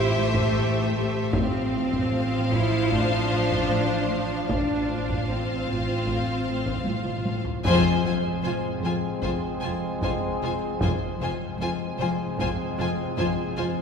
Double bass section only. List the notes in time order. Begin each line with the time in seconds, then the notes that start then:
Already playing: A1
1.34 A1
4.49 A1
7.65 F1
8.05 F1
8.44 F1
8.83 F1
9.24 F1
9.63 F1
10.03 F1
10.42 F1
10.81 F1
11.21 F1
11.60 F1
11.99 F1
12.38 F1
12.79 F1
13.17 F1
13.57 F1